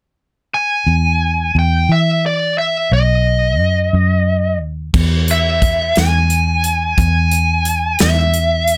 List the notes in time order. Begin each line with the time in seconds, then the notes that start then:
0.54 G#5
0.87 E2
1.55 E2 G5
1.89 E3 E5
2.26 D5
2.58 E5
2.92 B1 D#5
3.59 F#2
3.93 F#2
4.61 D#2
4.94 E2, kick, crash
5.28 E5, closed hi-hat
5.62 kick, closed hi-hat
5.96 E2 G#5, snare, closed hi-hat
6.30 closed hi-hat
6.64 closed hi-hat
6.98 E2 G#5, kick, closed hi-hat
7.31 closed hi-hat
7.65 closed hi-hat
7.99 E2 E5, snare, closed hi-hat
8.34 closed hi-hat
8.68 closed hi-hat